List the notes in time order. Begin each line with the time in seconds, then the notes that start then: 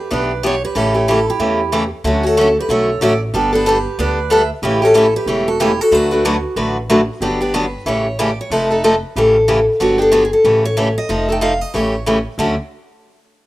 Already playing: B4
0.11 B1 E3 B3 D4 G4 B4 D5
0.43 E3 B3 D4 G4 C#5
0.64 G4 B4
0.75 A1 C#3 E3 A3 C#4 E4 G4 A4
0.94 A3 C#4 G4
1.08 C#3 E3 A3 C#4 E4 G4 A4
1.28 E4 G4
1.40 E2 C#3 E3 A3 C#4 G4
1.72 C#3 E3 A3 C#4 G4
2.04 D2 D3 F#3 A3 C#4 D4 F#4
2.23 A3 C#4 F#4 A4
2.37 D3 F#3 A3 C#4 F#4 A4
2.59 G4 B4
2.69 B1 D3 F#3 A3 C#4 F#4 A4 C#5
3.01 A1 D3 F#3 A3 C#4 F#4 A4 D5
3.33 G1 G3 B3 D4 G4 A4
3.53 B3 D4 G4 A4 B4
3.66 G3 B3 D4 G4 A4 B4
3.98 D2 G3 B3 D4 A4 B4 D5
4.30 G3 B3 D4 A4 B4 E5
4.62 A1 C#3 E3 A3 C#4 E4 G4
4.82 A3 C#4 F#4 G4 A4
4.94 C#3 E3 A3 C#4 G4 A4
4.98 E4
5.16 G4 B4
5.26 E1 C#3 E3 A3 C#4 G4
5.48 F#4 A4
5.60 C#3 E3 A3 C#4 E4 G4
5.81 F#4 A4
5.91 D2 D3 F#3 A3 D4 F#4 B4
6.11 A3 D4 F#4 B4
6.25 D3 F#3 A3 D4 F#4 B4
6.56 A1 D3 F#3 A3 D4 F#4 B4
6.90 D3 F#3 A3 D4 F#4 B4
7.21 G1 D3 F#3 B3 D4 G4
7.41 B3 D4 G4 B4
7.54 D3 F#3 B3 D4 G4 B4
7.86 A1 C#3 E3 A3 C#4 G4 C#5
8.19 C#3 E3 A3 C#4 G4 D5
8.41 C#5
8.50 F1 F3 A3 D#4 A4 B4
8.71 A3 D#4 A4
8.84 F3 A3 D#4 A4
9.16 A1 C#3 E3 A3 C#4 G4 A4
9.48 C#3 E3 A3 C#4 G4
9.80 G1 D3 F#3 B3 D4 F#4 G4
9.98 B3 D4 G4 A4
10.12 D3 F#3 B3 D4 G4
10.25 G#4
10.33 A4
10.44 A1 C#3 E3 A3 C#4 G4
10.65 C#5
10.77 C#3 E3 A3 C#4 G4
10.98 D#5
11.09 F1 F3 A3 D#4 A4
11.29 A3 D#4 A4 G5
11.41 F3 A3 D#4 A4 F5
11.61 D#5
11.74 A1 C#3 E3 A3 C#4 G4 C#5
12.06 C#3 E3 A3 C#4 G4
12.38 D2 D3 F#3 A3 C#4 F#4 D5